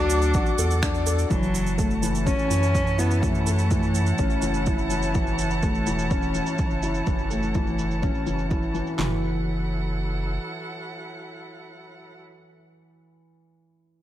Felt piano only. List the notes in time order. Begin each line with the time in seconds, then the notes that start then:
Already playing: F#3 D4 F#4 A4
0.34 F#4
0.59 A4
0.82 D4
1.06 A4
1.30 E3
1.78 A3
2.02 E3
2.26 C#4
2.51 E3
2.98 E4
3.22 E3
3.47 A3
3.71 E3
4.19 C#4
4.42 E3
4.66 E4
4.91 E3
5.14 E3
5.63 A3
5.87 E3
6.11 C#4
6.35 E3
6.83 E4
7.07 E3
7.30 A3
7.55 E3
8.02 C#4
8.26 E3
8.50 E4
8.74 E3
8.98 E3